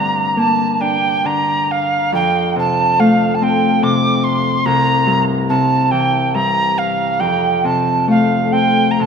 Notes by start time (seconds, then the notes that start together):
Already playing: G2 D3 A3 C4 F5 G5 A#5
0.37 A#3 A5
0.80 D4 G5
1.25 D3 A#5
1.71 F5
2.12 F2 G5
2.56 C3 A5
2.99 A3 F5
3.35 A5
3.42 C4 G5
3.83 C3 D6
4.24 C6
4.65 C2 A#5
5.06 G2
5.49 C3 A5
5.91 E3 G5
6.34 G2 A#5
6.78 F5
7.19 F2 G5
7.64 C3 A5
8.08 A3 F5
8.52 C4 G5
8.91 A#5
8.99 C3 A5